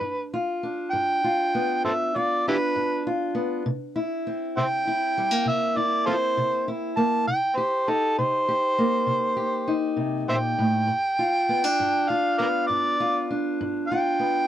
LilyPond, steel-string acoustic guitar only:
\new Staff \with { instrumentName = "Steel-string acoustic guitar" } { \time 12/8 \key g \mixolydian \tempo 4. = 66 << { r8 f'8 d'4 f'8 b4 f'8 d'4 f'8 b8 | r8 e'8 c'4 e'8 g16 bes8. e'8 c'4 e'8 bes8 | r8 g'8 ees'4 g'8 bes4 g'8 ees'2 | r8 f'8 b16 d'8. f'8 b4 f'8 d'4 f'8 b8 | } \\ { g,4 r8 g,4 r8 g,4 r8 g,4 r8 | c4 r8 c4 r8 c4 r8 c4 r8 | c4 r8 c4 r8 c4 r8 c8 bes,8 a,8 | g,4 r8 g,4 r8 g,4 r8 g,4 r8 | } >> }